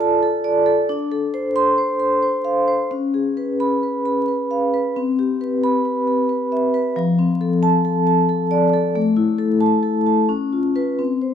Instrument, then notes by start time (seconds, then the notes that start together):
vibraphone
Already playing: F4 A4 D5
0.00 A5
0.23 A4
0.44 D5
0.66 A4
0.89 D4
1.12 A4
1.34 C5
1.56 C6
1.78 C5
2.00 C6
2.23 C5
2.45 F5
2.68 C5
2.91 C#4
3.14 G#4
3.37 B4
3.60 B5
3.83 B4
4.06 B5
4.28 B4
4.51 F5
4.74 B4
4.96 C4
5.19 G4
5.41 B4
5.64 B5
5.85 B4
6.07 B5
6.29 B4
6.52 E5
6.74 B4
6.96 F3
7.19 C4
7.41 A4
7.63 A5
7.85 A4
8.07 A5
8.29 A4
8.51 D5
8.73 A4
8.95 A3
9.16 E4
9.39 A4
9.61 A5
9.83 A4
10.06 A5
10.29 C#4
10.53 F4
10.75 F4 B4
10.99 C4
11.22 C5